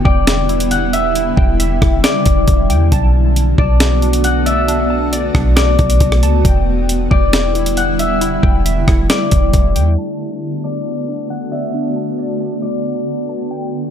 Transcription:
Already playing: ambient pad D3 G3 B3 E4
0.05 808-style bass E1, harp D5, synth keys G5, kick
0.27 snare, closed hi-hat
0.49 synth keys E4, closed hi-hat
0.60 closed hi-hat
0.71 harp F#5, closed hi-hat
0.93 harp E5, synth keys E5, closed hi-hat
1.15 ambient pad C#3, synth keys E4, closed hi-hat
1.37 808-style bass E1, synth keys G5, kick
1.60 synth keys E5, closed hi-hat
1.82 808-style bass E1, synth keys E4, kick, cross-stick
2.04 harp D5, snare, closed hi-hat
2.26 808-style bass E1, kick, closed hi-hat
2.48 808-style bass E1, kick, closed hi-hat
2.70 808-style bass E2, synth keys G5, closed hi-hat
2.92 808-style bass B1, ambient pad A3 B3 F#4, synth keys A5, kick, closed hi-hat
3.36 closed hi-hat
3.58 808-style bass B1, harp D5, synth keys A5, kick
3.80 snare, closed hi-hat
4.02 synth keys D4, closed hi-hat
4.13 closed hi-hat
4.24 harp F#5, closed hi-hat
4.46 synth keys D5, harp E5, closed hi-hat
4.68 synth keys D4, closed hi-hat
4.90 synth keys A5
5.13 synth keys D5, closed hi-hat
5.35 808-style bass B1, synth keys D4, kick, cross-stick
5.56 harp D5, snare, closed hi-hat
5.79 808-style bass B1, kick, closed hi-hat
5.90 closed hi-hat
6.00 808-style bass B1, kick, closed hi-hat
6.12 cross-stick
6.23 808-style bass C#2, synth keys A5, closed hi-hat
6.45 808-style bass E1, ambient pad D3 G3 E4, synth keys G5, kick, closed hi-hat
6.89 closed hi-hat
7.11 808-style bass E1, harp D5, synth keys G5, kick
7.33 snare, closed hi-hat
7.55 synth keys E4, closed hi-hat
7.66 closed hi-hat
7.77 harp F#5, closed hi-hat
7.99 synth keys E5, harp E5, closed hi-hat
8.21 ambient pad A3, synth keys E4, closed hi-hat
8.43 808-style bass E1, synth keys G5, kick
8.66 synth keys E5, closed hi-hat
8.88 808-style bass E1, synth keys E4, kick, cross-stick
9.10 harp D5, snare, closed hi-hat
9.31 808-style bass E1, kick, closed hi-hat
9.53 808-style bass E1, kick, closed hi-hat
9.76 808-style bass E2, synth keys G5, closed hi-hat
9.98 ambient pad D3 A3 B3 F#4, synth keys A5
10.64 harp D5, synth keys A5
11.08 synth keys D4
11.30 harp F#5
11.52 synth keys D5, harp E5
11.74 synth keys D4
11.96 synth keys A5
12.19 synth keys D5
12.41 synth keys D4
12.62 harp D5
13.29 synth keys A5
13.51 ambient pad G3 B3 E4, synth keys G5

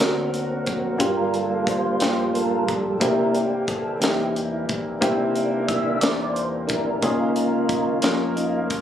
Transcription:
Already playing: grand piano C4, french horn section D4
0.00 fingered electric bass D2, grand piano D3 D4 F#4 A#4, french horn section F#3 C4, tonewheel organ A#3 C4 F#4, snare
0.34 closed hi-hat
0.66 fingered electric bass F1, tonewheel organ F#4, kick, closed hi-hat
0.98 fingered electric bass G1, grand piano G2 A#3 D4 F4 G4, french horn section F3 G3 D4, tonewheel organ G3 A#3, kick, closed hi-hat
1.02 tonewheel organ F4 A#4
1.34 tonewheel organ A4, closed hi-hat
1.67 tonewheel organ C5, kick, closed hi-hat
2.00 fingered electric bass A#1, grand piano A#3 D4 F4 G4, snare, closed hi-hat
2.33 tonewheel organ A#3 F4 A4 A#4, closed hi-hat
2.67 fingered electric bass A#1, tonewheel organ A4, kick, closed hi-hat
3.00 fingered electric bass C2, grand piano C3 A#3 C4 E4 G4, french horn section E3 C4, tonewheel organ A#3 D4 E4 A#4, kick, closed hi-hat
3.35 tonewheel organ G4, closed hi-hat
3.67 tonewheel organ A4, kick, closed hi-hat
4.00 fingered electric bass E2, grand piano A#3 C4 D#4 A#4, tonewheel organ G4, closed hi-hat
4.04 grand piano E4, snare
4.35 tonewheel organ E4, closed hi-hat
4.69 fingered electric bass A#1, kick, closed hi-hat
5.01 fingered electric bass C2, grand piano C3 A#3 C4 E4 G4, tonewheel organ A#3 D4 E4, french horn section D4, kick, closed hi-hat
5.35 closed hi-hat
5.68 tonewheel organ E5, kick, closed hi-hat
6.01 fingered electric bass E2, grand piano A#3 C4 D4 A#4, tonewheel organ D5, snare, closed hi-hat
6.09 grand piano E4
6.33 tonewheel organ C5, closed hi-hat
6.67 fingered electric bass A#1, tonewheel organ A#3 D4 E4 A#4, kick, closed hi-hat
7.01 fingered electric bass C#2, grand piano C#3 A#3 C#4 F4 G#4, french horn section F3 G#3 A#3 C#4, tonewheel organ A#3 D#4 F4, kick, closed hi-hat
7.36 closed hi-hat
7.69 kick, closed hi-hat
8.02 fingered electric bass F2, grand piano A#3 C#4 F4 A#4, snare, closed hi-hat
8.36 tonewheel organ A#3 D#4 F4, closed hi-hat
8.70 fingered electric bass G#1, kick, closed hi-hat

